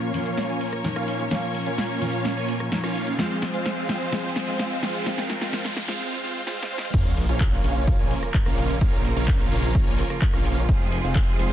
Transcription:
Already playing: steel-string acoustic guitar A#2 F3 A#3 C#4 F4, string section F3 A#3 C#4 A#4 C#5, supersaw synth A#3 C#4 F4 C#5 F5, riser
0.13 steel-string acoustic guitar A#2 F3 A#3 C#4 F4, supersaw synth A#3 C#4 F4 C#5 F5, open hi-hat
0.26 closed hi-hat
0.38 snare, closed hi-hat
0.49 supersaw synth A#3 C#4 F4 C#5 G#5, closed hi-hat
0.61 open hi-hat
0.73 cross-stick, closed hi-hat
0.84 steel-string acoustic guitar A#2 F3 A#3 C#4 D#4, snare, closed hi-hat
0.96 supersaw synth A#3 C#4 F4 C#5 F5, cross-stick, closed hi-hat
1.08 open hi-hat
1.20 closed hi-hat
1.30 steel-string acoustic guitar A#2 F3 A#3 C#4 F4, supersaw synth A#3 C#4 F4 C#5 F5, snare, closed hi-hat
1.55 open hi-hat
1.66 supersaw synth A#3 C#4 F4 C#5 F5, closed hi-hat
1.78 snare, open hi-hat
1.90 closed hi-hat
2.00 steel-string acoustic guitar A#2 F3 A#3 C#4 F4, supersaw synth A#3 C#4 F4 C#5 F5, open hi-hat
2.13 closed hi-hat
2.25 snare, closed hi-hat
2.37 supersaw synth A#3 C#4 F4 C#5 G#5, closed hi-hat
2.48 open hi-hat
2.60 cross-stick, closed hi-hat
2.71 steel-string acoustic guitar A#2 F3 A#3 C#4 D#4, snare, closed hi-hat
2.84 supersaw synth A#3 C#4 F4 C#5 F5, cross-stick, closed hi-hat
2.95 open hi-hat
3.07 closed hi-hat
3.18 steel-string acoustic guitar F3 G#3 C4 F4, string section G#3 C4 G#4 C5, supersaw synth G#3 C4 F4 C5 F5, snare, closed hi-hat
3.42 snare, open hi-hat
3.54 supersaw synth G#3 C4 F4 C5 F5, closed hi-hat
3.66 snare, closed hi-hat
3.88 steel-string acoustic guitar F3 G#3 C4 F4, supersaw synth G#3 C4 F4 C5 F5, snare, open hi-hat
4.01 closed hi-hat
4.11 steel-string acoustic guitar F3 G#3 C4 F4, supersaw synth G#3 C4 F4 C5 F5, snare, closed hi-hat
4.24 closed hi-hat
4.36 snare, open hi-hat
4.48 supersaw synth G#3 C4 F4 C5 F5, closed hi-hat
4.59 snare, closed hi-hat
4.71 closed hi-hat
4.82 steel-string acoustic guitar F3 G#3 C4 F4, supersaw synth G#3 C4 F4 C5 F5, snare, open hi-hat
4.95 closed hi-hat
5.05 steel-string acoustic guitar F3 G#3 C4 F4, supersaw synth G#3 C4 F4 C5 F5, string section A#4, snare, closed hi-hat
5.18 snare
5.30 snare, open hi-hat
5.41 supersaw synth G#3 C4 F4 C5 F5, snare, closed hi-hat
5.52 steel-string acoustic guitar F3 G#3 C4 F4, supersaw synth G#3 C4 F4 C5 F5, snare, open hi-hat
5.65 snare, closed hi-hat
5.76 snare, open hi-hat
5.88 supersaw synth G#3 C4 F4 C5 F5, snare, closed hi-hat
6.00 supersaw synth G#3 C4 F4 C5 F5
6.23 supersaw synth G#3 C4 F4 C5 F5
6.47 supersaw synth G#3 C4 F4 C5 F5, snare
6.62 snare
6.70 supersaw synth G#3 C4 F4 C5 F5
6.78 snare
6.94 detuned saw bass A#1, string section C#3 F3 A#3 F4 A#4, supersaw synth A#3 C#4 F4 C#5 F5, kick, closed hi-hat, crash, sub drop, shaker
7.06 shaker
7.17 open hi-hat
7.29 detuned saw bass A#1, supersaw synth A#3 C#4 F4 C#5 F5, closed hi-hat, shaker
7.40 kick, clap, closed hi-hat, shaker
7.53 shaker
7.64 detuned saw bass A#1, supersaw synth A#3 C#4 F4 C#5 F5, open hi-hat
7.76 closed hi-hat, shaker
7.87 kick, closed hi-hat, shaker
7.99 detuned saw bass A#1, supersaw synth A#3 C#4 F4 C#5 G#5, closed hi-hat, shaker
8.11 open hi-hat
8.23 cross-stick, closed hi-hat, shaker
8.34 kick, clap, closed hi-hat, shaker
8.46 detuned saw bass A#1, supersaw synth A#3 C#4 F4 C#5 F5, cross-stick, closed hi-hat, shaker
8.58 open hi-hat
8.70 closed hi-hat, shaker
8.81 detuned saw bass A#1, supersaw synth A#3 C#4 F4 C#5 F5, kick, closed hi-hat, shaker
8.93 closed hi-hat, shaker
9.05 open hi-hat
9.16 detuned saw bass A#1, supersaw synth A#3 C#4 F4 C#5 F5, closed hi-hat, shaker
9.28 kick, clap, open hi-hat, shaker
9.41 shaker
9.52 detuned saw bass A#1, supersaw synth A#3 C#4 F4 C#5 F5, open hi-hat
9.63 closed hi-hat, shaker
9.75 kick, closed hi-hat, shaker
9.87 detuned saw bass A#1, supersaw synth A#3 C#4 F4 C#5 G#5, closed hi-hat, shaker
9.98 open hi-hat
10.10 cross-stick, closed hi-hat, shaker
10.22 kick, clap, closed hi-hat, shaker
10.34 detuned saw bass A#1, supersaw synth A#3 C#4 F4 C#5 F5, cross-stick, closed hi-hat, shaker
10.45 open hi-hat
10.57 closed hi-hat, shaker
10.69 detuned saw bass F1, string section C3 G#3 G#4, supersaw synth G#3 C4 F4 C5 F5, kick, closed hi-hat, shaker
10.81 shaker
10.92 open hi-hat
11.04 detuned saw bass F1, supersaw synth G#3 C4 F4 C5 F5, closed hi-hat, shaker
11.16 kick, clap, closed hi-hat, shaker
11.28 shaker
11.39 detuned saw bass F1, supersaw synth G#3 C4 F4 C5 F5, open hi-hat

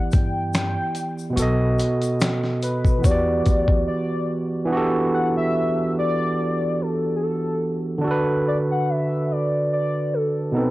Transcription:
Already playing: tine electric piano E3 B3 E4 G4 D5, soft synth lead F#5
0.12 upright bass G2, soft synth lead G5, kick, closed hi-hat, shaker
0.54 soft synth lead G5, finger snap, snare, closed hi-hat, shaker
0.95 closed hi-hat, shaker
1.19 shaker
1.30 tine electric piano B2 B3
1.36 upright bass B1, tine electric piano F#4 A4, closed hi-hat, shaker
1.42 tine electric piano D#5
1.79 closed hi-hat, shaker
2.02 closed hi-hat, shaker
2.21 finger snap, snare, closed hi-hat, shaker
2.44 snare
2.62 soft synth lead B4, closed hi-hat, shaker
2.85 kick, shaker
2.99 tine electric piano E3 B3
3.04 upright bass E2, tine electric piano F#4 G4, soft synth lead D5, kick, closed hi-hat, shaker
3.11 tine electric piano D5
3.46 upright bass D2, kick, closed hi-hat, shaker
3.68 kick
3.88 soft synth lead D5
4.65 tine electric piano E3 B3
4.70 tine electric piano D4 F#4
4.75 tine electric piano G4 A4
5.14 soft synth lead F#5
5.37 soft synth lead E5
5.98 soft synth lead D5
6.81 soft synth lead A4
7.16 soft synth lead G#4
7.23 soft synth lead A4
7.98 tine electric piano D3 D4
8.04 tine electric piano F#4 A4
8.11 tine electric piano B4
8.48 soft synth lead D5
8.71 soft synth lead F#5
8.90 soft synth lead E5
9.31 soft synth lead D5
9.72 soft synth lead D5
10.14 soft synth lead A4
10.52 tine electric piano B2 B3 D#4
10.56 tine electric piano C4 A4, soft synth lead B4

